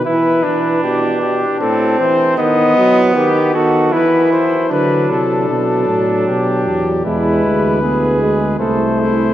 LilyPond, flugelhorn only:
\new Staff \with { instrumentName = "Flugelhorn" } { \time 3/4 \key e \minor \tempo 4 = 77 e'8 d'4. c'4 | b4. fis'8 e'4 | d'4 d'2 | e'4 gis'4 a'8 e'8 | }